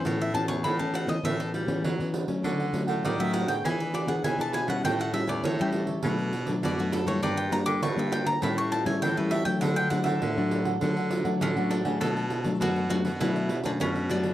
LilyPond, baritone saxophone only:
\new Staff \with { instrumentName = "Baritone saxophone" } { \clef bass \time 4/4 \key d \major \tempo 4 = 100 a,8. e,16 a,4 a,8 g8 fis8 r8 | d8. a,16 ees4 e4 e8. b,16 | a,8. e,16 a,4 b,4 b,8. a,16 | g,8. d16 g,4 a,4 a,8. r16 |
d8. a,16 d4 d4 d8. cis16 | \key b \minor b,4 b,8. b,16 b,8. fis,16 b,4 | }